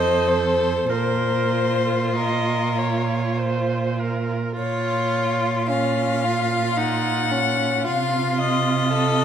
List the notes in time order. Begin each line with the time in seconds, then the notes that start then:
Already playing: F2 A4 C5 D#5
0.28 C5
0.89 A#2 F4 A#4 C5
2.16 A#4 D#5
2.78 C#5
3.39 C5
4.00 A#4
4.57 A#2 F4 C#5
5.69 C#4 F4 F5
6.24 F4
6.77 D#4 F#5
7.31 C#4
7.85 C3 F4 F5
8.41 D#5
8.92 A4